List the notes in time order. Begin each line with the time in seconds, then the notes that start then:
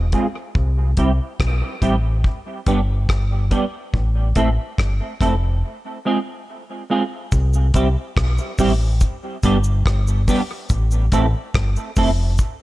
Already playing: E1
0.12 G#3 C4 F4 G#4, kick, closed hi-hat
0.55 C2, kick
0.97 C2 G3 C4 E4 G4, kick, closed hi-hat
1.40 B1, kick, cross-stick
1.82 A1 G3 C4 E4 G4, kick, closed hi-hat
2.24 kick
2.66 G1 G3 B3 D4 G4, kick, closed hi-hat
3.09 G1, kick, cross-stick
3.51 G3 B3 D4 G4, kick, closed hi-hat
3.94 A1, kick
4.35 A1 A3 C4 E4 A4, kick, closed hi-hat
4.78 G1, kick, cross-stick
5.21 F1 A3 C4 E4 A4, kick, cross-stick, closed hi-hat
6.05 G#3 C4 F4 G#4
6.90 G#3 C4 F4 G#4
7.32 C2, kick, cabasa
7.53 cabasa
7.74 C2 G3 C4 E4 G4, kick, closed hi-hat, cabasa
8.17 B1, kick, cross-stick
8.38 cabasa
8.58 A1 G3 C4 E4 G4, kick, open hi-hat, cabasa
9.01 kick, hi-hat pedal, cabasa
9.43 G1 G3 B3 D4 G4, kick, closed hi-hat, cabasa
9.64 cabasa
9.86 G1, kick, cross-stick
10.07 cabasa
10.28 G3 B3 D4 G4, kick, open hi-hat, cabasa
10.69 A1, kick, hi-hat pedal, cabasa
10.91 cabasa
11.12 A1 A3 C4 E4 A4, kick, closed hi-hat, cabasa
11.54 G1, kick, cross-stick
11.76 cabasa
11.96 F1 A3 C4 E4 A4, kick, open hi-hat, cabasa
12.38 kick, hi-hat pedal, cabasa